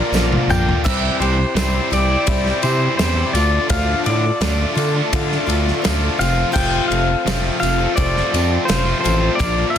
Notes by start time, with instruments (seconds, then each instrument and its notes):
Already playing: overdriven electric guitar D3 A#3 D4 F4, steel-string acoustic guitar F4, accordion F4 A#4 D5 A#5, pedal steel guitar A#4
0.12 fm bass A#1, overdriven electric guitar A#2 D3, steel-string acoustic guitar F3, snare, tambourine
0.16 overdriven electric guitar A#3 D4 F4
0.32 overdriven electric guitar A#3 D4 F4, high tom
0.48 fm bass A#1, overdriven electric guitar D3 A#3, pedal steel guitar G5, mid tom, tambourine
0.52 overdriven electric guitar D4 F4
0.67 overdriven electric guitar A#3 D4 F4, floor tom
0.85 fm bass C2, overdriven electric guitar C3 E3 G3 C4 E4, accordion E4 C5 G5, steel-string acoustic guitar G4, pedal steel guitar E5, kick, crash, tambourine
0.89 accordion G4
1.02 overdriven electric guitar C4 E4
1.06 overdriven electric guitar G3
1.20 fm bass C2, steel-string acoustic guitar C4 E4 G4, pedal steel guitar C5, ride
1.39 muted overdriven electric guitar stroke
1.55 fm bass C2, overdriven electric guitar C3 E3 G3 C4 E4, pedal steel guitar C5, snare, ride, tambourine
1.59 steel-string acoustic guitar G4
1.75 overdriven electric guitar G3 C4 E4
1.90 fm bass C2, steel-string acoustic guitar C4 E4 G4, pedal steel guitar D5, ride, tambourine
2.10 overdriven electric guitar G3 C4 E4
2.26 fm bass C2, steel-string acoustic guitar C3 G3 C4 E4 G4, kick, ride, tambourine
2.46 overdriven electric guitar G3 C4 E4, snare
2.62 fm bass C3, overdriven electric guitar E3 G3 C4, steel-string acoustic guitar G4, pedal steel guitar C5, ride, tambourine
2.66 overdriven electric guitar E4
2.97 fm bass E2, overdriven electric guitar C3 E3 G3 C4, pedal steel guitar C5, snare, ride, tambourine
3.02 overdriven electric guitar E4, steel-string acoustic guitar G4
3.16 overdriven electric guitar G3 C4 E4
3.33 fm bass D2, overdriven electric guitar D3 A3, accordion F4 A4 D5 A5, pedal steel guitar D5, ride, tambourine
3.37 overdriven electric guitar D4 F4
3.53 overdriven electric guitar A3 D4 F4
3.69 fm bass D2, overdriven electric guitar D3 A3 D4, steel-string acoustic guitar F3 F4, pedal steel guitar F5, kick, ride, tambourine
3.88 overdriven electric guitar A3 D4 F4
4.04 fm bass A2, steel-string acoustic guitar A3 D4 F4, pedal steel guitar D5, ride
4.25 muted overdriven electric guitar stroke
4.41 fm bass D2, overdriven electric guitar D3 A3 D4 F4, steel-string acoustic guitar F3, snare, ride, tambourine
4.59 overdriven electric guitar D4 F4
4.63 overdriven electric guitar A3
4.75 fm bass D3, steel-string acoustic guitar A3 D4 F4, ride, tambourine
4.95 overdriven electric guitar A3 D4 F4
5.13 steel-string acoustic guitar D3 F3 A3 D4 F4, fm bass D3, kick, ride, tambourine
5.30 overdriven electric guitar A3 D4 F4, snare
5.46 fm bass D2, overdriven electric guitar D3 A3 D4, steel-string acoustic guitar F4, ride, tambourine
5.52 overdriven electric guitar F4
5.67 snare
5.82 fm bass D2, overdriven electric guitar D3 A3 D4, steel-string acoustic guitar F3, snare, ride, tambourine
5.86 overdriven electric guitar F4
6.02 overdriven electric guitar A3 D4 F4
6.19 fm bass F1, overdriven electric guitar F2 C3 F3 A3 C4 F4, accordion C5, pedal steel guitar F5, ride, tambourine
6.35 overdriven electric guitar F3 A3 C4 F4
6.53 fm bass F1, overdriven electric guitar F2 C3 F3 A3 C4, steel-string acoustic guitar F4, pedal steel guitar G5, kick, tambourine, crash
6.58 overdriven electric guitar F4
6.73 overdriven electric guitar F3 A3 C4 F4
6.88 fm bass F1, steel-string acoustic guitar A3 C4 F4, pedal steel guitar F5, ride
6.93 steel-string acoustic guitar F3
7.10 muted overdriven electric guitar stroke
7.26 fm bass F1, overdriven electric guitar F2 C3 F3 A3 C4 F4, snare, ride, tambourine
7.43 overdriven electric guitar F3 A3 C4 F4
7.59 fm bass F1, steel-string acoustic guitar F3 A3 C4 F4, pedal steel guitar F5, ride, tambourine
7.78 overdriven electric guitar A3 C4 F4
7.82 overdriven electric guitar F3
7.96 fm bass F1, steel-string acoustic guitar F2 C3 F3 A3 C4 F4, pedal steel guitar D5, kick, ride, tambourine
8.14 overdriven electric guitar F3 A3 C4 F4, snare
8.33 fm bass F2, overdriven electric guitar F3 A3 C4 F4, ride, tambourine
8.65 overdriven electric guitar F2 C3, steel-string acoustic guitar F3, pedal steel guitar C5, tambourine
8.69 fm bass F1, overdriven electric guitar A3 C4 F4, snare, ride
8.86 overdriven electric guitar F3 A3 C4 F4
9.01 overdriven electric guitar F3 A3 C4, pedal steel guitar C5
9.05 fm bass A1, overdriven electric guitar F4, ride, tambourine
9.21 overdriven electric guitar F3 A3 C4 F4
9.35 overdriven electric guitar A#2, steel-string acoustic guitar F3, pedal steel guitar D5
9.39 fm bass A#1, overdriven electric guitar D3 A#3 D4 F4, accordion A#4 D5 A#5, kick, ride, tambourine
9.56 overdriven electric guitar D4 F4
9.61 overdriven electric guitar A#3
9.70 pedal steel guitar F5